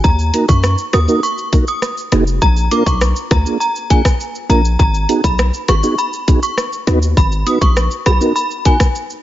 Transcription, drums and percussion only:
0.04 kick, shaker
0.19 shaker
0.34 closed hi-hat, shaker
0.48 kick, shaker
0.63 cross-stick, shaker
0.78 shaker
0.93 cross-stick, closed hi-hat, shaker
1.08 shaker
1.23 shaker
1.38 shaker
1.53 kick, closed hi-hat, shaker
1.67 shaker
1.82 cross-stick, shaker
1.97 shaker
2.12 cross-stick, closed hi-hat, shaker
2.27 shaker
2.42 kick, shaker
2.56 shaker
2.71 closed hi-hat, shaker
2.86 kick, shaker
3.01 cross-stick, shaker
3.16 shaker
3.31 kick, cross-stick, closed hi-hat, shaker
3.46 shaker
3.61 shaker
3.76 shaker
3.90 kick, closed hi-hat, shaker
4.05 kick, cross-stick, shaker
4.20 shaker
4.35 shaker
4.50 closed hi-hat, shaker
4.65 shaker
4.80 kick, shaker
4.94 shaker
5.09 closed hi-hat, shaker
5.24 kick, shaker
5.39 cross-stick, shaker
5.54 shaker
5.68 cross-stick, closed hi-hat, shaker
5.83 shaker
5.98 shaker
6.13 shaker
6.28 kick, closed hi-hat, shaker
6.43 shaker
6.58 cross-stick, shaker
6.73 shaker
6.87 cross-stick, closed hi-hat, shaker
7.02 shaker
7.17 kick, shaker
7.32 shaker
7.47 closed hi-hat, shaker
7.62 kick, shaker
7.76 cross-stick, shaker
7.91 shaker
8.06 cross-stick, closed hi-hat, shaker
8.21 shaker
8.36 shaker
8.51 shaker
8.65 kick, closed hi-hat, shaker
8.80 kick, cross-stick, shaker
8.95 shaker
9.10 shaker

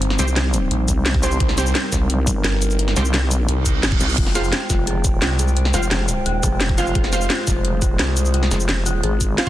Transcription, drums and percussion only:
0.02 closed hi-hat
0.10 snare
0.19 snare, closed hi-hat, shaker
0.28 shaker
0.36 snare, closed hi-hat
0.54 closed hi-hat, shaker
0.71 closed hi-hat
0.88 kick, closed hi-hat, shaker
1.06 snare, closed hi-hat
1.14 kick
1.23 snare, closed hi-hat, shaker
1.32 shaker
1.40 kick, closed hi-hat
1.49 snare
1.58 snare, closed hi-hat, shaker
1.66 shaker
1.75 snare, closed hi-hat
1.92 kick, snare, closed hi-hat, shaker
2.10 closed hi-hat
2.27 kick, closed hi-hat, shaker
2.44 snare, closed hi-hat
2.62 closed hi-hat, shaker
2.71 shaker
2.79 closed hi-hat
2.88 snare
2.96 snare, closed hi-hat, shaker
3.05 shaker
3.14 snare, closed hi-hat
3.31 closed hi-hat, shaker
3.49 closed hi-hat
3.66 kick, closed hi-hat, shaker
3.83 snare, closed hi-hat, shaker
3.92 kick
4.01 snare, closed hi-hat, shaker
4.09 shaker
4.18 kick, closed hi-hat, crash
4.27 snare
4.35 snare, closed hi-hat, shaker
4.44 shaker
4.53 snare, closed hi-hat
4.70 kick, snare, closed hi-hat, shaker
4.87 closed hi-hat
5.04 kick, closed hi-hat, shaker
5.22 snare, closed hi-hat
5.39 closed hi-hat, shaker
5.48 shaker
5.57 closed hi-hat
5.65 snare
5.74 snare, closed hi-hat, shaker
5.83 shaker
5.91 snare, closed hi-hat
6.09 closed hi-hat, shaker
6.26 closed hi-hat
6.43 kick, closed hi-hat, shaker
6.61 snare, closed hi-hat
6.69 kick
6.78 snare, closed hi-hat, shaker
6.87 shaker
6.95 kick, closed hi-hat
7.04 snare
7.13 snare, closed hi-hat, shaker
7.21 shaker
7.30 snare, closed hi-hat
7.47 kick, snare, closed hi-hat, shaker
7.65 closed hi-hat
7.82 kick, closed hi-hat, shaker
7.99 snare, closed hi-hat
8.17 closed hi-hat, shaker
8.25 shaker
8.34 closed hi-hat
8.43 snare
8.51 snare, closed hi-hat, shaker
8.60 shaker
8.69 snare, closed hi-hat
8.86 closed hi-hat, shaker
9.03 closed hi-hat
9.21 kick, closed hi-hat, shaker
9.38 snare, closed hi-hat

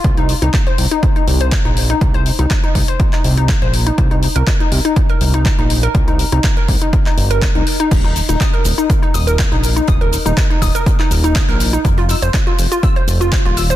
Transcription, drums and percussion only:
0.04 kick, closed hi-hat
0.17 closed hi-hat
0.29 open hi-hat
0.42 closed hi-hat
0.54 kick, clap, closed hi-hat
0.67 closed hi-hat
0.78 open hi-hat
0.91 closed hi-hat
1.03 kick, closed hi-hat
1.16 closed hi-hat
1.28 open hi-hat
1.41 closed hi-hat
1.52 kick, clap, closed hi-hat
1.65 closed hi-hat
1.77 open hi-hat
1.90 closed hi-hat
2.01 kick, closed hi-hat
2.14 closed hi-hat
2.26 open hi-hat
2.39 closed hi-hat
2.50 kick, clap, closed hi-hat
2.64 closed hi-hat
2.75 kick, open hi-hat
2.88 closed hi-hat
3.00 kick, closed hi-hat
3.13 clap, closed hi-hat
3.24 open hi-hat
3.37 closed hi-hat
3.49 kick, clap, closed hi-hat
3.62 closed hi-hat
3.74 open hi-hat
3.87 closed hi-hat
3.98 kick, closed hi-hat
4.11 closed hi-hat
4.23 open hi-hat
4.36 closed hi-hat
4.47 kick, clap, closed hi-hat
4.60 closed hi-hat
4.72 open hi-hat
4.85 closed hi-hat
4.96 kick, closed hi-hat
5.09 closed hi-hat
5.21 open hi-hat
5.34 closed hi-hat
5.45 kick, clap, closed hi-hat
5.59 closed hi-hat
5.70 open hi-hat
5.83 closed hi-hat
5.95 kick, closed hi-hat
6.08 closed hi-hat
6.19 open hi-hat
6.32 closed hi-hat
6.44 kick, clap, closed hi-hat
6.57 closed hi-hat
6.68 kick, open hi-hat
6.82 closed hi-hat
6.93 kick, closed hi-hat
7.06 clap, closed hi-hat
7.18 open hi-hat
7.31 closed hi-hat
7.42 kick, clap, closed hi-hat
7.55 closed hi-hat
7.67 open hi-hat
7.80 closed hi-hat
7.91 kick, closed hi-hat, crash, shaker
8.04 closed hi-hat
8.16 closed hi-hat, open hi-hat, shaker
8.28 closed hi-hat, shaker
8.40 kick, snare, clap, closed hi-hat, shaker
8.54 closed hi-hat
8.64 closed hi-hat, open hi-hat, shaker
8.78 closed hi-hat, shaker
8.90 kick, closed hi-hat, shaker
9.03 closed hi-hat
9.14 closed hi-hat, open hi-hat, shaker
9.27 closed hi-hat, shaker
9.38 kick, snare, clap, closed hi-hat, shaker
9.52 closed hi-hat
9.63 closed hi-hat, open hi-hat, shaker
9.77 closed hi-hat, shaker
9.87 kick, closed hi-hat, shaker
10.01 closed hi-hat
10.12 closed hi-hat, open hi-hat, shaker
10.26 closed hi-hat, shaker
10.37 kick, snare, clap, closed hi-hat, shaker
10.51 closed hi-hat
10.62 kick, closed hi-hat, open hi-hat, shaker
10.75 closed hi-hat, shaker
10.86 kick, closed hi-hat, shaker
11.00 clap, closed hi-hat
11.11 closed hi-hat, open hi-hat, shaker
11.24 closed hi-hat, shaker
11.35 kick, snare, clap, closed hi-hat, shaker
11.49 snare, closed hi-hat
11.60 closed hi-hat, open hi-hat, shaker
11.73 closed hi-hat, shaker
11.85 kick, closed hi-hat, shaker
11.98 closed hi-hat
12.09 closed hi-hat, open hi-hat, shaker
12.22 closed hi-hat, shaker
12.34 kick, snare, clap, closed hi-hat, shaker
12.47 closed hi-hat
12.58 closed hi-hat, open hi-hat, shaker
12.72 closed hi-hat, shaker
12.83 kick, closed hi-hat, shaker
12.96 closed hi-hat
13.08 closed hi-hat, open hi-hat, shaker
13.21 closed hi-hat, shaker
13.32 kick, snare, clap, closed hi-hat, shaker
13.45 closed hi-hat
13.57 closed hi-hat, open hi-hat, shaker
13.70 closed hi-hat, shaker

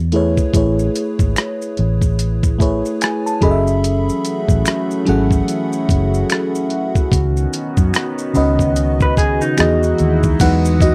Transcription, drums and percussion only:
0.12 closed hi-hat
0.37 kick, maracas
0.54 kick, closed hi-hat, maracas
0.79 maracas
0.95 closed hi-hat, maracas
1.19 kick, maracas
1.36 finger snap, cross-stick, closed hi-hat, maracas
1.62 maracas
1.77 closed hi-hat
2.02 kick, maracas
2.19 closed hi-hat, maracas
2.43 kick, maracas
2.60 kick, closed hi-hat, maracas
2.85 maracas
3.01 finger snap, cross-stick, closed hi-hat, maracas
3.27 maracas
3.42 kick, closed hi-hat
3.67 maracas
3.84 closed hi-hat, maracas
4.09 maracas
4.25 closed hi-hat, maracas
4.49 kick, maracas
4.66 finger snap, cross-stick, closed hi-hat, maracas
4.91 maracas
5.07 closed hi-hat
5.31 kick, maracas
5.48 closed hi-hat, maracas
5.73 maracas
5.89 kick, closed hi-hat, maracas
6.14 maracas
6.30 finger snap, cross-stick, closed hi-hat, maracas
6.55 maracas
6.70 closed hi-hat
6.95 kick, maracas
7.12 kick, closed hi-hat, maracas
7.37 maracas
7.53 closed hi-hat, maracas
7.77 kick, maracas
7.94 finger snap, cross-stick, closed hi-hat, maracas
8.18 maracas
8.35 open hi-hat, maracas
8.59 kick, maracas
8.76 closed hi-hat, maracas
9.00 kick, maracas
9.17 kick, closed hi-hat, maracas
9.41 maracas
9.58 finger snap, cross-stick, closed hi-hat, maracas
9.83 maracas
9.98 closed hi-hat, maracas
10.23 kick, maracas
10.40 kick, closed hi-hat, crash, maracas
10.65 maracas
10.80 kick, closed hi-hat, maracas

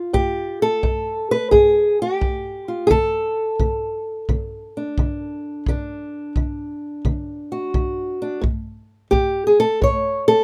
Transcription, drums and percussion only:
0.14 kick
0.83 kick
1.52 kick
2.22 kick
2.91 kick
3.60 kick
4.29 kick
4.98 kick
5.66 kick
6.36 kick
7.05 kick
7.74 kick
8.44 kick
9.13 kick
9.82 kick

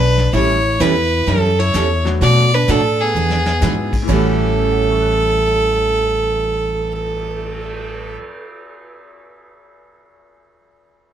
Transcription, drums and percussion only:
0.17 snare
0.33 brush sweep, snare
0.81 snare, hi-hat pedal
1.28 brush sweep, snare
1.74 snare, hi-hat pedal
2.05 snare
2.21 brush sweep, snare
2.68 snare, hi-hat pedal
3.30 snare
3.46 snare
3.62 snare, hi-hat pedal
3.93 kick, crash
4.09 kick, crash
4.40 cymbal swell

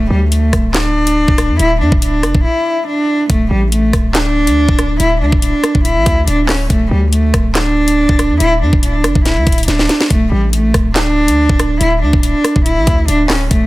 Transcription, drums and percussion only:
0.32 closed hi-hat
0.53 kick, cross-stick, closed hi-hat
0.74 snare, clap, closed hi-hat
1.07 closed hi-hat
1.28 kick
1.38 cross-stick, closed hi-hat
1.59 closed hi-hat
1.92 kick
2.02 closed hi-hat
2.23 cross-stick, closed hi-hat
2.35 kick
3.30 kick, closed hi-hat
3.72 closed hi-hat
3.93 kick, cross-stick, closed hi-hat
4.15 snare, clap, closed hi-hat
4.47 closed hi-hat
4.69 kick
4.79 cross-stick, closed hi-hat
5.00 closed hi-hat
5.32 kick
5.42 closed hi-hat
5.64 cross-stick, closed hi-hat
5.75 kick
5.85 closed hi-hat
6.06 kick, closed hi-hat
6.28 closed hi-hat
6.49 cross-stick, snare, clap, open hi-hat
6.70 kick, closed hi-hat
7.13 closed hi-hat
7.34 kick, cross-stick, closed hi-hat
7.55 snare, clap, closed hi-hat
7.88 closed hi-hat
8.09 kick
8.19 cross-stick, closed hi-hat
8.40 closed hi-hat
8.73 kick
8.83 closed hi-hat
9.04 cross-stick, closed hi-hat
9.15 kick
9.26 snare, closed hi-hat
9.47 kick, closed hi-hat
9.52 closed hi-hat
9.58 closed hi-hat
9.63 closed hi-hat
9.68 snare, closed hi-hat
9.79 snare
9.89 snare, closed hi-hat
10.01 snare
10.10 kick, closed hi-hat
10.53 closed hi-hat
10.74 kick, cross-stick, closed hi-hat
10.96 snare, clap, closed hi-hat
11.28 closed hi-hat
11.49 kick
11.59 cross-stick, closed hi-hat
11.81 closed hi-hat
12.13 kick
12.23 closed hi-hat
12.44 cross-stick, closed hi-hat
12.56 kick
12.66 closed hi-hat
12.87 kick, closed hi-hat
13.08 closed hi-hat
13.30 cross-stick, snare, clap, open hi-hat
13.51 kick, closed hi-hat

